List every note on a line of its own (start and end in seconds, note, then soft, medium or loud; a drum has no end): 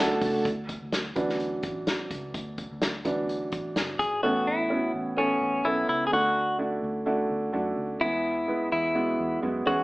0.00 0.18 D2 medium
0.00 0.47 D3 medium
0.00 0.47 A3 medium
0.00 0.47 D4 medium
0.00 0.47 E4 medium
0.00 0.47 F#4 loud
0.00 0.42 A4 medium
0.00 0.47 A4 loud
0.00 0.42 A5 loud
0.00 0.42 A5 medium
0.22 0.44 C#2 medium
0.22 kick medium
0.22 open hi-hat medium
0.22 tambourine soft
0.45 0.80 D2 medium
0.45 kick medium
0.45 closed hi-hat medium
0.69 kick medium
0.69 closed hi-hat medium
0.82 1.14 D2 medium
0.92 snare medium
0.92 closed hi-hat medium
1.16 1.65 D2 medium
1.16 1.48 E3 soft
1.16 1.49 F#3 soft
1.16 1.49 D4 medium
1.16 kick medium
1.16 closed hi-hat medium
1.29 snare soft
1.40 closed hi-hat medium
1.63 2.07 A1 medium
1.63 kick medium
1.63 closed hi-hat medium
1.87 snare medium
1.87 closed hi-hat medium
2.11 2.33 C#2 medium
2.11 kick medium
2.11 closed hi-hat medium
2.34 2.69 D2 medium
2.34 kick medium
2.34 closed hi-hat medium
2.58 kick medium
2.58 closed hi-hat medium
2.71 3.03 D2 medium
2.82 snare medium
2.82 closed hi-hat medium
3.05 3.49 D2 medium
3.05 3.37 E3 soft
3.05 3.38 F#3 soft
3.05 3.38 D4 medium
3.05 kick medium
3.05 closed hi-hat medium
3.29 closed hi-hat medium
3.52 3.74 A1 medium
3.52 kick medium
3.52 closed hi-hat medium
3.76 3.98 F#1 medium
3.76 snare medium
3.76 closed hi-hat medium
3.99 4.22 G#1 medium
3.99 4.23 G#4 medium
3.99 kick medium
3.99 closed hi-hat medium
4.23 4.91 A1 medium
4.23 4.90 A2 medium
4.23 4.68 B3 medium
4.23 4.68 C#4 medium
4.23 4.68 E4 medium
4.23 4.47 F#4 medium
4.23 4.68 A4 medium
4.47 4.91 E4 medium
4.70 5.15 B3 medium
4.70 5.15 C#4 medium
4.70 5.15 E4 medium
4.70 5.15 F#4 medium
4.94 5.38 A1 medium
5.17 5.62 B3 medium
5.17 5.62 C#4 medium
5.17 5.67 C#4 medium
5.17 5.62 E4 medium
5.17 5.62 A4 medium
5.41 5.63 A1 medium
5.64 5.87 B1 medium
5.64 6.09 B3 medium
5.64 6.09 C#4 medium
5.64 5.88 E4 medium
5.64 6.10 E4 soft
5.64 6.10 A4 medium
5.89 6.11 C#2 medium
5.89 6.06 E4 medium
6.07 6.13 G#4 medium
6.12 6.80 D2 medium
6.12 6.79 D3 medium
6.12 6.57 A3 medium
6.12 6.57 D4 medium
6.12 6.57 E4 medium
6.12 6.57 F#4 medium
6.58 7.03 A3 medium
6.58 7.04 D4 medium
6.58 7.04 E4 medium
6.58 7.04 F#4 medium
6.83 7.27 D2 medium
7.06 7.51 A3 medium
7.06 7.51 D4 medium
7.06 7.51 E4 medium
7.06 7.51 F#4 medium
7.30 7.52 D2 medium
7.53 7.76 F#2 medium
7.53 7.98 A3 medium
7.53 7.98 D4 medium
7.53 7.98 E4 medium
7.53 7.98 F#4 medium
7.78 8.00 D2 medium
8.01 8.69 E2 medium
8.01 8.68 E3 medium
8.01 8.45 G#3 medium
8.01 8.46 B3 medium
8.01 8.46 E4 medium
8.01 8.68 E4 loud
8.01 8.46 G#4 medium
8.48 8.93 G#3 medium
8.48 8.93 B3 medium
8.48 8.93 E4 medium
8.48 8.93 B4 medium
8.72 9.16 E2 medium
8.72 9.39 E4 medium
8.95 9.40 G#3 medium
8.95 9.40 B3 medium
8.95 9.40 E4 medium
8.95 9.40 F#4 medium
9.19 9.41 E2 medium
9.42 9.65 F#2 medium
9.42 9.64 G#3 medium
9.42 9.66 B3 medium
9.42 9.65 E4 medium
9.42 9.67 F#4 medium
9.66 9.84 E2 medium
9.66 9.84 E3 medium
9.66 9.84 G#3 medium
9.66 9.84 C#4 medium
9.66 9.84 E4 medium
9.66 9.84 F#4 medium
9.66 9.84 G#4 medium